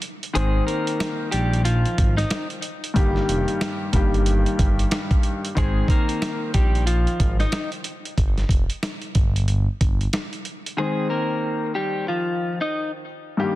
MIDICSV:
0, 0, Header, 1, 5, 480
1, 0, Start_track
1, 0, Key_signature, -4, "major"
1, 0, Tempo, 652174
1, 258, Time_signature, 4, 2, 24, 8
1, 9975, End_track
2, 0, Start_track
2, 0, Title_t, "Clean electric guitar"
2, 0, Program_c, 0, 27
2, 257, Note_on_c, 0, 68, 113
2, 264, Note_on_c, 0, 56, 83
2, 473, Note_off_c, 0, 68, 0
2, 477, Note_off_c, 0, 56, 0
2, 490, Note_on_c, 0, 70, 86
2, 496, Note_on_c, 0, 58, 58
2, 945, Note_off_c, 0, 70, 0
2, 948, Note_off_c, 0, 58, 0
2, 967, Note_on_c, 0, 67, 81
2, 974, Note_on_c, 0, 55, 64
2, 1188, Note_off_c, 0, 67, 0
2, 1191, Note_off_c, 0, 55, 0
2, 1213, Note_on_c, 0, 65, 88
2, 1219, Note_on_c, 0, 53, 68
2, 1578, Note_off_c, 0, 65, 0
2, 1581, Note_off_c, 0, 53, 0
2, 1599, Note_on_c, 0, 63, 86
2, 1605, Note_on_c, 0, 75, 66
2, 1817, Note_off_c, 0, 63, 0
2, 1820, Note_off_c, 0, 75, 0
2, 4108, Note_on_c, 0, 68, 115
2, 4114, Note_on_c, 0, 56, 89
2, 4319, Note_off_c, 0, 68, 0
2, 4322, Note_off_c, 0, 56, 0
2, 4342, Note_on_c, 0, 70, 79
2, 4348, Note_on_c, 0, 58, 64
2, 4791, Note_off_c, 0, 70, 0
2, 4794, Note_off_c, 0, 58, 0
2, 4815, Note_on_c, 0, 67, 85
2, 4821, Note_on_c, 0, 55, 69
2, 5032, Note_off_c, 0, 67, 0
2, 5035, Note_off_c, 0, 55, 0
2, 5053, Note_on_c, 0, 65, 90
2, 5059, Note_on_c, 0, 53, 70
2, 5418, Note_off_c, 0, 65, 0
2, 5421, Note_off_c, 0, 53, 0
2, 5445, Note_on_c, 0, 63, 89
2, 5451, Note_on_c, 0, 75, 69
2, 5660, Note_off_c, 0, 63, 0
2, 5664, Note_off_c, 0, 75, 0
2, 7937, Note_on_c, 0, 68, 107
2, 7943, Note_on_c, 0, 56, 79
2, 8153, Note_off_c, 0, 68, 0
2, 8156, Note_off_c, 0, 56, 0
2, 8170, Note_on_c, 0, 70, 82
2, 8175, Note_on_c, 0, 58, 54
2, 8625, Note_off_c, 0, 70, 0
2, 8627, Note_off_c, 0, 58, 0
2, 8648, Note_on_c, 0, 67, 76
2, 8654, Note_on_c, 0, 55, 62
2, 8868, Note_off_c, 0, 67, 0
2, 8871, Note_off_c, 0, 55, 0
2, 8893, Note_on_c, 0, 65, 84
2, 8899, Note_on_c, 0, 53, 63
2, 9258, Note_off_c, 0, 65, 0
2, 9261, Note_off_c, 0, 53, 0
2, 9280, Note_on_c, 0, 63, 80
2, 9286, Note_on_c, 0, 75, 61
2, 9498, Note_off_c, 0, 63, 0
2, 9501, Note_off_c, 0, 75, 0
2, 9975, End_track
3, 0, Start_track
3, 0, Title_t, "Upright piano"
3, 0, Program_c, 1, 0
3, 246, Note_on_c, 1, 51, 103
3, 258, Note_on_c, 1, 60, 84
3, 264, Note_on_c, 1, 72, 106
3, 1913, Note_off_c, 1, 51, 0
3, 1919, Note_off_c, 1, 60, 0
3, 1922, Note_off_c, 1, 72, 0
3, 2163, Note_on_c, 1, 43, 91
3, 2168, Note_on_c, 1, 51, 87
3, 2171, Note_on_c, 1, 55, 83
3, 2176, Note_on_c, 1, 58, 85
3, 2180, Note_on_c, 1, 67, 112
3, 2845, Note_off_c, 1, 43, 0
3, 2848, Note_off_c, 1, 51, 0
3, 2849, Note_off_c, 1, 55, 0
3, 2852, Note_off_c, 1, 58, 0
3, 2854, Note_off_c, 1, 67, 0
3, 2890, Note_on_c, 1, 43, 88
3, 2894, Note_on_c, 1, 51, 83
3, 2899, Note_on_c, 1, 55, 80
3, 2904, Note_on_c, 1, 58, 82
3, 2908, Note_on_c, 1, 67, 101
3, 4019, Note_off_c, 1, 43, 0
3, 4021, Note_off_c, 1, 51, 0
3, 4023, Note_off_c, 1, 55, 0
3, 4025, Note_off_c, 1, 58, 0
3, 4027, Note_off_c, 1, 67, 0
3, 4085, Note_on_c, 1, 51, 102
3, 4097, Note_on_c, 1, 60, 81
3, 4103, Note_on_c, 1, 72, 108
3, 5753, Note_off_c, 1, 51, 0
3, 5758, Note_off_c, 1, 60, 0
3, 5761, Note_off_c, 1, 72, 0
3, 7926, Note_on_c, 1, 51, 95
3, 7938, Note_on_c, 1, 60, 77
3, 7944, Note_on_c, 1, 72, 98
3, 9593, Note_off_c, 1, 51, 0
3, 9599, Note_off_c, 1, 60, 0
3, 9602, Note_off_c, 1, 72, 0
3, 9842, Note_on_c, 1, 43, 87
3, 9846, Note_on_c, 1, 51, 83
3, 9851, Note_on_c, 1, 55, 80
3, 9856, Note_on_c, 1, 58, 83
3, 9860, Note_on_c, 1, 67, 105
3, 9975, Note_off_c, 1, 43, 0
3, 9975, Note_off_c, 1, 51, 0
3, 9975, Note_off_c, 1, 55, 0
3, 9975, Note_off_c, 1, 58, 0
3, 9975, Note_off_c, 1, 67, 0
3, 9975, End_track
4, 0, Start_track
4, 0, Title_t, "Analog synth bass"
4, 0, Program_c, 2, 38
4, 264, Note_on_c, 2, 32, 116
4, 452, Note_off_c, 2, 32, 0
4, 983, Note_on_c, 2, 34, 93
4, 1363, Note_off_c, 2, 34, 0
4, 1462, Note_on_c, 2, 32, 97
4, 1651, Note_off_c, 2, 32, 0
4, 2181, Note_on_c, 2, 31, 115
4, 2371, Note_off_c, 2, 31, 0
4, 2422, Note_on_c, 2, 29, 97
4, 2537, Note_off_c, 2, 29, 0
4, 2899, Note_on_c, 2, 31, 101
4, 3281, Note_off_c, 2, 31, 0
4, 3382, Note_on_c, 2, 31, 99
4, 3571, Note_off_c, 2, 31, 0
4, 4101, Note_on_c, 2, 32, 115
4, 4291, Note_off_c, 2, 32, 0
4, 4819, Note_on_c, 2, 34, 91
4, 5201, Note_off_c, 2, 34, 0
4, 5302, Note_on_c, 2, 32, 100
4, 5491, Note_off_c, 2, 32, 0
4, 6020, Note_on_c, 2, 31, 113
4, 6210, Note_off_c, 2, 31, 0
4, 6252, Note_on_c, 2, 29, 99
4, 6371, Note_off_c, 2, 29, 0
4, 6739, Note_on_c, 2, 31, 102
4, 7121, Note_off_c, 2, 31, 0
4, 7222, Note_on_c, 2, 31, 101
4, 7411, Note_off_c, 2, 31, 0
4, 9975, End_track
5, 0, Start_track
5, 0, Title_t, "Drums"
5, 13, Note_on_c, 9, 42, 72
5, 86, Note_off_c, 9, 42, 0
5, 169, Note_on_c, 9, 42, 53
5, 243, Note_off_c, 9, 42, 0
5, 260, Note_on_c, 9, 42, 86
5, 334, Note_off_c, 9, 42, 0
5, 501, Note_on_c, 9, 42, 77
5, 575, Note_off_c, 9, 42, 0
5, 642, Note_on_c, 9, 42, 53
5, 715, Note_off_c, 9, 42, 0
5, 738, Note_on_c, 9, 38, 118
5, 744, Note_on_c, 9, 42, 95
5, 812, Note_off_c, 9, 38, 0
5, 817, Note_off_c, 9, 42, 0
5, 973, Note_on_c, 9, 42, 82
5, 1047, Note_off_c, 9, 42, 0
5, 1129, Note_on_c, 9, 42, 53
5, 1203, Note_off_c, 9, 42, 0
5, 1216, Note_on_c, 9, 42, 81
5, 1290, Note_off_c, 9, 42, 0
5, 1365, Note_on_c, 9, 42, 35
5, 1439, Note_off_c, 9, 42, 0
5, 1459, Note_on_c, 9, 36, 97
5, 1459, Note_on_c, 9, 42, 88
5, 1532, Note_off_c, 9, 42, 0
5, 1533, Note_off_c, 9, 36, 0
5, 1603, Note_on_c, 9, 38, 35
5, 1606, Note_on_c, 9, 42, 53
5, 1676, Note_off_c, 9, 38, 0
5, 1680, Note_off_c, 9, 42, 0
5, 1696, Note_on_c, 9, 42, 98
5, 1699, Note_on_c, 9, 38, 111
5, 1770, Note_off_c, 9, 42, 0
5, 1773, Note_off_c, 9, 38, 0
5, 1841, Note_on_c, 9, 42, 38
5, 1914, Note_off_c, 9, 42, 0
5, 1931, Note_on_c, 9, 42, 71
5, 2005, Note_off_c, 9, 42, 0
5, 2088, Note_on_c, 9, 42, 54
5, 2162, Note_off_c, 9, 42, 0
5, 2178, Note_on_c, 9, 36, 113
5, 2180, Note_on_c, 9, 42, 86
5, 2251, Note_off_c, 9, 36, 0
5, 2253, Note_off_c, 9, 42, 0
5, 2324, Note_on_c, 9, 38, 33
5, 2397, Note_off_c, 9, 38, 0
5, 2421, Note_on_c, 9, 42, 78
5, 2495, Note_off_c, 9, 42, 0
5, 2561, Note_on_c, 9, 42, 52
5, 2635, Note_off_c, 9, 42, 0
5, 2658, Note_on_c, 9, 38, 115
5, 2664, Note_on_c, 9, 42, 97
5, 2732, Note_off_c, 9, 38, 0
5, 2737, Note_off_c, 9, 42, 0
5, 2893, Note_on_c, 9, 42, 82
5, 2896, Note_on_c, 9, 36, 94
5, 2966, Note_off_c, 9, 42, 0
5, 2970, Note_off_c, 9, 36, 0
5, 3049, Note_on_c, 9, 42, 52
5, 3123, Note_off_c, 9, 42, 0
5, 3136, Note_on_c, 9, 42, 81
5, 3209, Note_off_c, 9, 42, 0
5, 3284, Note_on_c, 9, 42, 36
5, 3358, Note_off_c, 9, 42, 0
5, 3378, Note_on_c, 9, 42, 90
5, 3379, Note_on_c, 9, 36, 97
5, 3452, Note_off_c, 9, 36, 0
5, 3452, Note_off_c, 9, 42, 0
5, 3527, Note_on_c, 9, 42, 50
5, 3600, Note_off_c, 9, 42, 0
5, 3616, Note_on_c, 9, 42, 99
5, 3619, Note_on_c, 9, 38, 114
5, 3690, Note_off_c, 9, 42, 0
5, 3693, Note_off_c, 9, 38, 0
5, 3759, Note_on_c, 9, 36, 95
5, 3761, Note_on_c, 9, 42, 37
5, 3833, Note_off_c, 9, 36, 0
5, 3834, Note_off_c, 9, 42, 0
5, 3852, Note_on_c, 9, 42, 70
5, 3925, Note_off_c, 9, 42, 0
5, 4008, Note_on_c, 9, 42, 55
5, 4082, Note_off_c, 9, 42, 0
5, 4098, Note_on_c, 9, 36, 114
5, 4100, Note_on_c, 9, 42, 89
5, 4171, Note_off_c, 9, 36, 0
5, 4174, Note_off_c, 9, 42, 0
5, 4330, Note_on_c, 9, 36, 96
5, 4341, Note_on_c, 9, 42, 77
5, 4403, Note_off_c, 9, 36, 0
5, 4414, Note_off_c, 9, 42, 0
5, 4481, Note_on_c, 9, 42, 52
5, 4555, Note_off_c, 9, 42, 0
5, 4578, Note_on_c, 9, 38, 122
5, 4583, Note_on_c, 9, 42, 95
5, 4651, Note_off_c, 9, 38, 0
5, 4657, Note_off_c, 9, 42, 0
5, 4813, Note_on_c, 9, 42, 81
5, 4816, Note_on_c, 9, 36, 94
5, 4887, Note_off_c, 9, 42, 0
5, 4890, Note_off_c, 9, 36, 0
5, 4969, Note_on_c, 9, 42, 53
5, 5043, Note_off_c, 9, 42, 0
5, 5056, Note_on_c, 9, 42, 81
5, 5130, Note_off_c, 9, 42, 0
5, 5205, Note_on_c, 9, 42, 37
5, 5278, Note_off_c, 9, 42, 0
5, 5298, Note_on_c, 9, 42, 86
5, 5299, Note_on_c, 9, 36, 97
5, 5372, Note_off_c, 9, 36, 0
5, 5372, Note_off_c, 9, 42, 0
5, 5443, Note_on_c, 9, 38, 36
5, 5446, Note_on_c, 9, 42, 52
5, 5517, Note_off_c, 9, 38, 0
5, 5520, Note_off_c, 9, 42, 0
5, 5535, Note_on_c, 9, 42, 100
5, 5538, Note_on_c, 9, 38, 115
5, 5609, Note_off_c, 9, 42, 0
5, 5612, Note_off_c, 9, 38, 0
5, 5681, Note_on_c, 9, 42, 38
5, 5755, Note_off_c, 9, 42, 0
5, 5772, Note_on_c, 9, 42, 70
5, 5845, Note_off_c, 9, 42, 0
5, 5928, Note_on_c, 9, 42, 56
5, 6002, Note_off_c, 9, 42, 0
5, 6017, Note_on_c, 9, 36, 112
5, 6019, Note_on_c, 9, 42, 88
5, 6091, Note_off_c, 9, 36, 0
5, 6093, Note_off_c, 9, 42, 0
5, 6164, Note_on_c, 9, 38, 35
5, 6165, Note_on_c, 9, 42, 37
5, 6237, Note_off_c, 9, 38, 0
5, 6238, Note_off_c, 9, 42, 0
5, 6249, Note_on_c, 9, 36, 96
5, 6260, Note_on_c, 9, 42, 79
5, 6323, Note_off_c, 9, 36, 0
5, 6334, Note_off_c, 9, 42, 0
5, 6401, Note_on_c, 9, 42, 52
5, 6474, Note_off_c, 9, 42, 0
5, 6497, Note_on_c, 9, 38, 117
5, 6503, Note_on_c, 9, 42, 98
5, 6571, Note_off_c, 9, 38, 0
5, 6576, Note_off_c, 9, 42, 0
5, 6635, Note_on_c, 9, 42, 36
5, 6709, Note_off_c, 9, 42, 0
5, 6733, Note_on_c, 9, 42, 80
5, 6736, Note_on_c, 9, 36, 98
5, 6807, Note_off_c, 9, 42, 0
5, 6810, Note_off_c, 9, 36, 0
5, 6889, Note_on_c, 9, 42, 53
5, 6963, Note_off_c, 9, 42, 0
5, 6976, Note_on_c, 9, 42, 82
5, 7050, Note_off_c, 9, 42, 0
5, 7219, Note_on_c, 9, 36, 98
5, 7219, Note_on_c, 9, 42, 91
5, 7292, Note_off_c, 9, 36, 0
5, 7292, Note_off_c, 9, 42, 0
5, 7366, Note_on_c, 9, 42, 54
5, 7440, Note_off_c, 9, 42, 0
5, 7456, Note_on_c, 9, 42, 99
5, 7459, Note_on_c, 9, 38, 113
5, 7529, Note_off_c, 9, 42, 0
5, 7532, Note_off_c, 9, 38, 0
5, 7601, Note_on_c, 9, 42, 37
5, 7675, Note_off_c, 9, 42, 0
5, 7692, Note_on_c, 9, 42, 70
5, 7766, Note_off_c, 9, 42, 0
5, 7848, Note_on_c, 9, 42, 53
5, 7922, Note_off_c, 9, 42, 0
5, 9975, End_track
0, 0, End_of_file